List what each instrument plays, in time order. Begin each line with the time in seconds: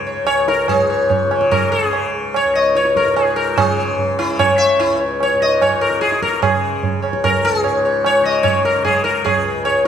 Already playing: tanpura C#2 G#2 C#3
0.07 sitar C#5
0.24 tanpura C#2, sitar C#5, tabla na
0.48 sitar A#4, tabla te
0.68 tanpura G#2, sitar G#4 C#5, tabla na, tabla ge
0.90 sitar C#5
1.09 sitar C#5, tabla tin, tabla ge
1.28 tanpura C#3, sitar C#5, tabla na
1.41 tabla ke
1.51 sitar A#4, tabla na, tabla ge
1.72 sitar G#4
1.86 tanpura C#3
1.93 tabla na
2.34 sitar C#5, tabla na
2.45 tanpura C#2
2.55 sitar D#5
2.75 sitar C#5, tabla te
2.85 tabla te
2.96 sitar A#4, tabla ke
3.05 tanpura G#2, tabla te
3.16 sitar G#4, tabla na
3.36 sitar A#4
3.58 tanpura C#3, sitar G#4, tabla na, tabla ge
3.78 sitar C#5
3.98 tabla tin, tabla ge
4.19 tanpura C#3, sitar E4, tabla na
4.39 sitar C#5, tabla na, tabla ge
4.58 sitar E5
4.76 tanpura C#2, sitar E4, tabla na
5.00 sitar C#5
5.20 sitar C#5, tabla na
5.34 tanpura G#2
5.42 sitar D#5
5.61 sitar C#5, tabla na, tabla ge
5.81 sitar A#4
5.90 tanpura C#3
6.01 sitar G#4, tabla te
6.12 tabla te
6.22 sitar A#4, tabla ke
6.33 tabla te
6.42 sitar G#4, tabla na, tabla ge
6.50 tanpura C#3
6.83 tabla tin, tabla ge
7.02 sitar C#5, tabla na
7.07 tanpura C#2
7.13 tabla ke
7.24 sitar A#4, tabla na, tabla ge
7.45 sitar G#4
7.64 tanpura G#2, sitar C#5, tabla na
7.85 sitar C#5
8.04 sitar C#5, tabla na
8.21 tanpura C#3
8.25 sitar D#5
8.43 sitar C#5, tabla na, tabla ge
8.65 sitar A#4, tabla te
8.79 tanpura C#3
8.85 sitar G#4, tabla na, tabla ge
9.04 sitar A#4, tabla te
9.24 sitar G#4, tabla na, tabla ge
9.36 tanpura C#2
9.65 sitar C#5, tabla na